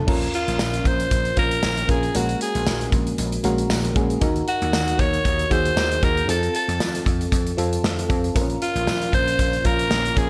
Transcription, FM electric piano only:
0, 0, Header, 1, 2, 480
1, 0, Start_track
1, 0, Key_signature, -5, "minor"
1, 0, Tempo, 517241
1, 75, Time_signature, 4, 2, 24, 8
1, 9557, End_track
2, 0, Start_track
2, 0, Title_t, "FM electric piano"
2, 0, Program_c, 0, 5
2, 0, Control_c, 0, 64, 127
2, 0, Note_on_c, 0, 81, 74
2, 66, Note_on_c, 0, 61, 95
2, 71, Note_on_c, 0, 65, 85
2, 77, Note_on_c, 0, 70, 100
2, 85, Control_c, 0, 64, 0
2, 94, Note_off_c, 0, 81, 0
2, 248, Control_c, 0, 64, 127
2, 882, Note_off_c, 0, 61, 0
2, 885, Note_off_c, 0, 65, 0
2, 888, Note_off_c, 0, 70, 0
2, 1267, Note_on_c, 0, 61, 75
2, 1272, Note_on_c, 0, 65, 68
2, 1278, Note_on_c, 0, 70, 79
2, 1680, Note_off_c, 0, 61, 0
2, 1683, Note_off_c, 0, 65, 0
2, 1686, Note_off_c, 0, 70, 0
2, 1746, Note_on_c, 0, 61, 73
2, 1754, Note_on_c, 0, 65, 65
2, 1758, Note_on_c, 0, 70, 78
2, 1955, Note_off_c, 0, 61, 0
2, 1959, Note_off_c, 0, 65, 0
2, 1961, Note_off_c, 0, 70, 0
2, 1990, Note_on_c, 0, 56, 80
2, 1992, Note_on_c, 0, 58, 71
2, 1996, Note_on_c, 0, 61, 69
2, 1997, Note_on_c, 0, 66, 74
2, 2000, Note_on_c, 0, 70, 90
2, 2004, Control_c, 0, 64, 0
2, 2151, Control_c, 0, 64, 127
2, 2804, Note_off_c, 0, 56, 0
2, 2805, Note_off_c, 0, 58, 0
2, 2807, Note_off_c, 0, 61, 0
2, 2808, Note_off_c, 0, 66, 0
2, 2809, Note_off_c, 0, 70, 0
2, 3188, Note_on_c, 0, 56, 91
2, 3190, Note_on_c, 0, 58, 84
2, 3194, Note_on_c, 0, 61, 84
2, 3195, Note_on_c, 0, 66, 86
2, 3199, Note_on_c, 0, 70, 101
2, 3601, Note_off_c, 0, 56, 0
2, 3602, Note_off_c, 0, 58, 0
2, 3604, Note_off_c, 0, 61, 0
2, 3605, Note_off_c, 0, 66, 0
2, 3607, Note_off_c, 0, 70, 0
2, 3667, Note_on_c, 0, 56, 86
2, 3671, Note_on_c, 0, 58, 80
2, 3675, Note_on_c, 0, 61, 76
2, 3676, Note_on_c, 0, 66, 76
2, 3679, Note_on_c, 0, 68, 91
2, 3876, Note_off_c, 0, 56, 0
2, 3877, Note_off_c, 0, 58, 0
2, 3880, Note_off_c, 0, 61, 0
2, 3880, Note_off_c, 0, 66, 0
2, 3882, Note_off_c, 0, 68, 0
2, 3907, Note_on_c, 0, 63, 94
2, 3915, Note_on_c, 0, 66, 86
2, 3918, Note_on_c, 0, 70, 108
2, 3928, Control_c, 0, 64, 0
2, 4085, Control_c, 0, 64, 127
2, 4723, Note_off_c, 0, 63, 0
2, 4727, Note_off_c, 0, 66, 0
2, 4729, Note_off_c, 0, 70, 0
2, 5105, Note_on_c, 0, 63, 75
2, 5110, Note_on_c, 0, 66, 73
2, 5116, Note_on_c, 0, 68, 86
2, 5520, Note_off_c, 0, 63, 0
2, 5522, Note_off_c, 0, 66, 0
2, 5525, Note_off_c, 0, 68, 0
2, 5588, Note_on_c, 0, 63, 70
2, 5593, Note_on_c, 0, 66, 65
2, 5599, Note_on_c, 0, 70, 80
2, 5796, Note_off_c, 0, 63, 0
2, 5799, Note_off_c, 0, 66, 0
2, 5802, Note_off_c, 0, 70, 0
2, 5825, Note_on_c, 0, 60, 82
2, 5831, Note_on_c, 0, 65, 75
2, 5837, Note_on_c, 0, 69, 91
2, 5848, Control_c, 0, 64, 0
2, 5993, Control_c, 0, 64, 127
2, 6642, Note_off_c, 0, 60, 0
2, 6645, Note_off_c, 0, 65, 0
2, 6648, Note_off_c, 0, 69, 0
2, 7027, Note_on_c, 0, 60, 91
2, 7031, Note_on_c, 0, 65, 79
2, 7037, Note_on_c, 0, 69, 95
2, 7441, Note_off_c, 0, 60, 0
2, 7442, Note_off_c, 0, 65, 0
2, 7446, Note_off_c, 0, 69, 0
2, 7509, Note_on_c, 0, 60, 83
2, 7512, Note_on_c, 0, 65, 78
2, 7519, Note_on_c, 0, 69, 89
2, 7717, Note_off_c, 0, 60, 0
2, 7718, Note_off_c, 0, 65, 0
2, 7721, Note_off_c, 0, 69, 0
2, 7748, Note_on_c, 0, 60, 75
2, 7756, Note_on_c, 0, 65, 85
2, 7760, Note_on_c, 0, 70, 97
2, 7767, Control_c, 0, 64, 0
2, 7807, Note_on_c, 0, 61, 87
2, 7815, Note_off_c, 0, 60, 0
2, 7945, Control_c, 0, 64, 127
2, 8567, Note_off_c, 0, 65, 0
2, 8570, Note_off_c, 0, 70, 0
2, 8593, Note_off_c, 0, 61, 0
2, 8948, Note_on_c, 0, 61, 75
2, 8953, Note_on_c, 0, 65, 70
2, 8959, Note_on_c, 0, 70, 86
2, 9361, Note_off_c, 0, 61, 0
2, 9364, Note_off_c, 0, 65, 0
2, 9367, Note_off_c, 0, 70, 0
2, 9430, Note_on_c, 0, 61, 73
2, 9436, Note_on_c, 0, 65, 62
2, 9442, Note_on_c, 0, 70, 79
2, 9557, Note_off_c, 0, 61, 0
2, 9557, Note_off_c, 0, 65, 0
2, 9557, Note_off_c, 0, 70, 0
2, 9557, End_track
0, 0, End_of_file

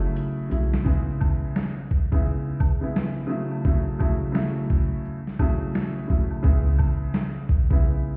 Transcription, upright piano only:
0, 0, Header, 1, 2, 480
1, 0, Start_track
1, 0, Key_signature, 4, "minor"
1, 0, Tempo, 697674
1, 591, Time_signature, 4, 2, 24, 8
1, 5620, End_track
2, 0, Start_track
2, 0, Title_t, "Upright piano"
2, 0, Program_c, 0, 0
2, 0, Note_on_c, 0, 49, 100
2, 0, Note_on_c, 0, 54, 88
2, 0, Note_on_c, 0, 57, 90
2, 0, Note_on_c, 0, 64, 108
2, 322, Note_off_c, 0, 49, 0
2, 325, Note_off_c, 0, 54, 0
2, 328, Note_off_c, 0, 57, 0
2, 331, Note_off_c, 0, 64, 0
2, 341, Note_on_c, 0, 49, 81
2, 347, Note_on_c, 0, 54, 77
2, 354, Note_on_c, 0, 57, 70
2, 359, Note_on_c, 0, 64, 87
2, 570, Note_off_c, 0, 49, 0
2, 574, Note_off_c, 0, 54, 0
2, 578, Note_off_c, 0, 57, 0
2, 580, Note_off_c, 0, 64, 0
2, 580, Note_on_c, 0, 49, 101
2, 586, Note_on_c, 0, 56, 92
2, 592, Note_on_c, 0, 59, 76
2, 598, Note_on_c, 0, 64, 100
2, 1262, Note_off_c, 0, 49, 0
2, 1264, Note_off_c, 0, 56, 0
2, 1268, Note_off_c, 0, 59, 0
2, 1270, Note_off_c, 0, 64, 0
2, 1457, Note_on_c, 0, 49, 92
2, 1463, Note_on_c, 0, 56, 74
2, 1469, Note_on_c, 0, 59, 79
2, 1475, Note_on_c, 0, 64, 94
2, 1768, Note_off_c, 0, 49, 0
2, 1771, Note_off_c, 0, 56, 0
2, 1774, Note_off_c, 0, 59, 0
2, 1777, Note_off_c, 0, 64, 0
2, 1933, Note_on_c, 0, 49, 79
2, 1939, Note_on_c, 0, 56, 81
2, 1945, Note_on_c, 0, 59, 87
2, 1951, Note_on_c, 0, 64, 93
2, 2237, Note_off_c, 0, 49, 0
2, 2247, Note_on_c, 0, 49, 97
2, 2253, Note_on_c, 0, 54, 89
2, 2256, Note_off_c, 0, 64, 0
2, 2260, Note_on_c, 0, 57, 84
2, 2266, Note_on_c, 0, 64, 100
2, 2271, Note_off_c, 0, 56, 0
2, 2274, Note_off_c, 0, 59, 0
2, 2484, Note_off_c, 0, 49, 0
2, 2487, Note_off_c, 0, 54, 0
2, 2491, Note_off_c, 0, 57, 0
2, 2494, Note_off_c, 0, 64, 0
2, 2509, Note_on_c, 0, 49, 93
2, 2515, Note_on_c, 0, 54, 86
2, 2521, Note_on_c, 0, 57, 93
2, 2526, Note_on_c, 0, 64, 94
2, 2734, Note_off_c, 0, 49, 0
2, 2738, Note_off_c, 0, 54, 0
2, 2741, Note_off_c, 0, 57, 0
2, 2744, Note_off_c, 0, 64, 0
2, 2744, Note_on_c, 0, 49, 95
2, 2751, Note_on_c, 0, 54, 78
2, 2756, Note_on_c, 0, 57, 81
2, 2762, Note_on_c, 0, 64, 103
2, 2963, Note_off_c, 0, 49, 0
2, 2968, Note_off_c, 0, 54, 0
2, 2973, Note_on_c, 0, 49, 94
2, 2975, Note_off_c, 0, 57, 0
2, 2978, Note_on_c, 0, 54, 88
2, 2980, Note_off_c, 0, 64, 0
2, 2985, Note_on_c, 0, 57, 87
2, 2990, Note_on_c, 0, 64, 103
2, 3551, Note_off_c, 0, 49, 0
2, 3553, Note_off_c, 0, 54, 0
2, 3557, Note_off_c, 0, 57, 0
2, 3559, Note_off_c, 0, 64, 0
2, 3712, Note_on_c, 0, 49, 99
2, 3718, Note_on_c, 0, 54, 87
2, 3724, Note_on_c, 0, 57, 92
2, 3730, Note_on_c, 0, 64, 103
2, 4162, Note_off_c, 0, 49, 0
2, 4165, Note_off_c, 0, 54, 0
2, 4168, Note_off_c, 0, 57, 0
2, 4171, Note_off_c, 0, 64, 0
2, 4181, Note_on_c, 0, 49, 76
2, 4187, Note_on_c, 0, 54, 75
2, 4193, Note_on_c, 0, 57, 71
2, 4199, Note_on_c, 0, 64, 85
2, 4411, Note_off_c, 0, 49, 0
2, 4415, Note_off_c, 0, 54, 0
2, 4418, Note_off_c, 0, 57, 0
2, 4420, Note_off_c, 0, 64, 0
2, 4421, Note_on_c, 0, 49, 100
2, 4427, Note_on_c, 0, 56, 91
2, 4432, Note_on_c, 0, 59, 78
2, 4439, Note_on_c, 0, 64, 100
2, 5102, Note_off_c, 0, 49, 0
2, 5105, Note_off_c, 0, 56, 0
2, 5108, Note_off_c, 0, 59, 0
2, 5111, Note_off_c, 0, 64, 0
2, 5300, Note_on_c, 0, 49, 89
2, 5305, Note_on_c, 0, 56, 74
2, 5311, Note_on_c, 0, 59, 80
2, 5317, Note_on_c, 0, 64, 96
2, 5609, Note_off_c, 0, 49, 0
2, 5612, Note_off_c, 0, 56, 0
2, 5615, Note_off_c, 0, 59, 0
2, 5618, Note_off_c, 0, 64, 0
2, 5620, End_track
0, 0, End_of_file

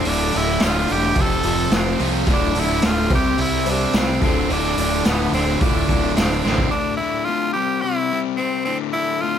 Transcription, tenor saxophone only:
0, 0, Header, 1, 2, 480
1, 0, Start_track
1, 0, Key_signature, -1, "minor"
1, 0, Tempo, 556070
1, 46, Time_signature, 4, 2, 24, 8
1, 8102, End_track
2, 0, Start_track
2, 0, Title_t, "Tenor saxophone"
2, 0, Program_c, 0, 66
2, 70, Note_on_c, 0, 62, 99
2, 323, Note_on_c, 0, 64, 98
2, 336, Note_off_c, 0, 62, 0
2, 545, Note_off_c, 0, 64, 0
2, 571, Note_on_c, 0, 65, 99
2, 798, Note_on_c, 0, 67, 112
2, 811, Note_off_c, 0, 65, 0
2, 1043, Note_on_c, 0, 69, 112
2, 1056, Note_off_c, 0, 67, 0
2, 1529, Note_on_c, 0, 60, 90
2, 1542, Note_off_c, 0, 69, 0
2, 1747, Note_off_c, 0, 60, 0
2, 2013, Note_on_c, 0, 62, 94
2, 2243, Note_on_c, 0, 64, 103
2, 2256, Note_off_c, 0, 62, 0
2, 2469, Note_on_c, 0, 65, 107
2, 2482, Note_off_c, 0, 64, 0
2, 2698, Note_off_c, 0, 65, 0
2, 2720, Note_on_c, 0, 67, 118
2, 2928, Note_off_c, 0, 67, 0
2, 2946, Note_on_c, 0, 64, 102
2, 3194, Note_on_c, 0, 62, 97
2, 3207, Note_off_c, 0, 64, 0
2, 3430, Note_on_c, 0, 60, 87
2, 3443, Note_off_c, 0, 62, 0
2, 3652, Note_off_c, 0, 60, 0
2, 3657, Note_on_c, 0, 60, 85
2, 3907, Note_on_c, 0, 62, 94
2, 3920, Note_off_c, 0, 60, 0
2, 4372, Note_off_c, 0, 62, 0
2, 4377, Note_on_c, 0, 59, 85
2, 4595, Note_off_c, 0, 59, 0
2, 4612, Note_on_c, 0, 60, 93
2, 4843, Note_on_c, 0, 62, 84
2, 4856, Note_off_c, 0, 60, 0
2, 5313, Note_off_c, 0, 62, 0
2, 5318, Note_on_c, 0, 60, 82
2, 5545, Note_off_c, 0, 60, 0
2, 5558, Note_on_c, 0, 60, 81
2, 5785, Note_off_c, 0, 60, 0
2, 5793, Note_on_c, 0, 62, 93
2, 6011, Note_off_c, 0, 62, 0
2, 6016, Note_on_c, 0, 64, 88
2, 6250, Note_on_c, 0, 65, 98
2, 6263, Note_off_c, 0, 64, 0
2, 6496, Note_off_c, 0, 65, 0
2, 6501, Note_on_c, 0, 67, 102
2, 6747, Note_on_c, 0, 64, 95
2, 6760, Note_off_c, 0, 67, 0
2, 7082, Note_off_c, 0, 64, 0
2, 7224, Note_on_c, 0, 60, 81
2, 7456, Note_off_c, 0, 60, 0
2, 7466, Note_on_c, 0, 60, 89
2, 7578, Note_off_c, 0, 60, 0
2, 7708, Note_on_c, 0, 64, 103
2, 7949, Note_on_c, 0, 65, 105
2, 7962, Note_off_c, 0, 64, 0
2, 8102, Note_off_c, 0, 65, 0
2, 8102, End_track
0, 0, End_of_file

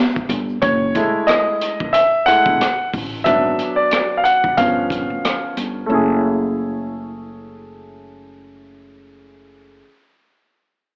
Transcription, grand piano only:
0, 0, Header, 1, 2, 480
1, 0, Start_track
1, 0, Tempo, 659341
1, 454, Time_signature, 4, 2, 24, 8
1, 7977, End_track
2, 0, Start_track
2, 0, Title_t, "Grand piano"
2, 0, Program_c, 0, 0
2, 449, Note_on_c, 0, 73, 77
2, 690, Note_on_c, 0, 56, 49
2, 696, Note_on_c, 0, 57, 46
2, 700, Note_on_c, 0, 64, 57
2, 924, Note_on_c, 0, 75, 85
2, 946, Note_off_c, 0, 73, 0
2, 1383, Note_off_c, 0, 56, 0
2, 1386, Note_off_c, 0, 57, 0
2, 1388, Note_off_c, 0, 64, 0
2, 1403, Note_on_c, 0, 76, 94
2, 1423, Note_off_c, 0, 75, 0
2, 1644, Note_on_c, 0, 78, 110
2, 1652, Note_on_c, 0, 56, 50
2, 1654, Note_on_c, 0, 57, 43
2, 1656, Note_off_c, 0, 76, 0
2, 1659, Note_on_c, 0, 64, 54
2, 1868, Note_off_c, 0, 56, 0
2, 1870, Note_off_c, 0, 57, 0
2, 1873, Note_off_c, 0, 64, 0
2, 2100, Note_off_c, 0, 78, 0
2, 2360, Note_on_c, 0, 76, 84
2, 2367, Note_on_c, 0, 54, 51
2, 2372, Note_on_c, 0, 59, 47
2, 2376, Note_on_c, 0, 62, 57
2, 2737, Note_on_c, 0, 74, 79
2, 2757, Note_off_c, 0, 76, 0
2, 3039, Note_on_c, 0, 77, 66
2, 3052, Note_off_c, 0, 74, 0
2, 3085, Note_on_c, 0, 78, 90
2, 3088, Note_off_c, 0, 77, 0
2, 3301, Note_off_c, 0, 54, 0
2, 3304, Note_off_c, 0, 59, 0
2, 3306, Note_off_c, 0, 62, 0
2, 3312, Note_off_c, 0, 78, 0
2, 3330, Note_on_c, 0, 77, 87
2, 3333, Note_on_c, 0, 53, 49
2, 3338, Note_on_c, 0, 59, 47
2, 3343, Note_on_c, 0, 61, 56
2, 4022, Note_off_c, 0, 77, 0
2, 4264, Note_off_c, 0, 53, 0
2, 4267, Note_off_c, 0, 59, 0
2, 4268, Note_on_c, 0, 57, 67
2, 4269, Note_off_c, 0, 61, 0
2, 4288, Note_on_c, 0, 61, 63
2, 4305, Note_on_c, 0, 64, 59
2, 4325, Note_on_c, 0, 68, 77
2, 7111, Note_off_c, 0, 57, 0
2, 7131, Note_off_c, 0, 61, 0
2, 7149, Note_off_c, 0, 64, 0
2, 7168, Note_off_c, 0, 68, 0
2, 7977, End_track
0, 0, End_of_file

